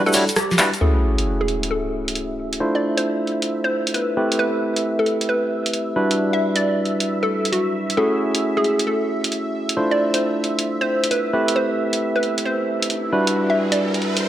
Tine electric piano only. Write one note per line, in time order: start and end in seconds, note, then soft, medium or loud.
0.06 0.12 G3 medium
0.06 0.12 D4 medium
0.06 0.12 E4 medium
0.06 0.12 F#4 medium
0.06 0.12 B4 medium
0.14 0.24 G3 medium
0.14 0.24 D4 medium
0.14 0.24 E4 medium
0.14 0.24 F#4 medium
0.14 0.24 C#5 medium
0.59 0.68 G3 medium
0.59 0.68 D4 medium
0.59 0.68 E4 medium
0.59 0.68 F#4 medium
0.59 0.68 B4 loud
0.81 2.58 A3 medium
0.81 2.58 C#4 medium
0.81 2.58 E4 medium
0.81 2.58 F#4 medium
0.81 2.58 G#4 medium
2.60 4.15 A3 medium
2.60 4.15 D4 medium
2.60 4.15 E4 medium
2.60 4.15 F4 medium
2.60 4.15 C5 medium
4.17 5.94 A3 medium
4.17 5.94 C4 medium
4.17 5.94 E4 medium
4.17 5.94 G4 medium
4.17 5.94 B4 medium
5.96 7.96 G3 medium
5.96 7.96 D4 medium
5.96 7.96 E4 medium
5.96 7.96 F#4 medium
5.96 7.96 B4 medium
7.97 9.75 A3 medium
7.97 9.75 C#4 medium
7.97 9.75 E4 medium
7.97 9.75 F#4 medium
7.97 9.75 G#4 medium
9.77 11.32 A3 medium
9.77 11.32 D4 medium
9.77 11.32 E4 medium
9.77 11.32 F4 medium
9.77 11.32 C5 medium
11.33 13.11 A3 medium
11.33 13.11 C4 medium
11.33 13.11 E4 medium
11.33 13.11 G4 medium
11.33 13.11 B4 medium
13.12 14.29 G3 medium
13.12 14.29 D4 medium
13.12 14.29 E4 medium
13.12 14.29 F#4 medium
13.12 14.29 B4 medium